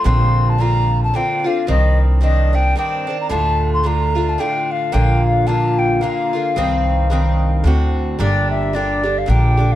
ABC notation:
X:1
M:3/4
L:1/16
Q:"Swing" 1/4=111
K:Bb
V:1 name="Flute"
c'3 a b3 a g2 f2 | e3 z e2 g2 g3 b | a3 c' b3 a g2 f2 | g2 f2 a2 g2 f4- |
f8 z4 | [K:Gdor] d2 e2 d3 f g3 f |]
V:2 name="Bouzouki"
[B,,D,CF]4 [B,,D,CF]4 [B,,D,CF]2 [D,CF]2 | [G,,E,C]4 [G,,E,CD]2 [E,CD]2 [G,,E,CD]2 [E,CD]2 | [A,,D,A,F]4 [A,,D,A,F]2 [D,A,F]2 [A,,D,A,F]4 | [B,,D,B,F]4 [B,,D,B,F]4 [B,,D,B,F]2 [D,B,F]2 |
[G,,E,CE]4 [G,,E,CE]4 [A,,D,C^F]4 | [K:Gdor] [B,,D,DG]4 [B,,D,DG]2 [D,DG]2 [B,,D,DG]2 [D,DG]2 |]
V:3 name="Upright bass" clef=bass
B,,,8 z4 | C,,8 z4 | D,,8 z4 | B,,,8 z4 |
C,,8 D,,4 | [K:Gdor] G,,,8 B,,,4 |]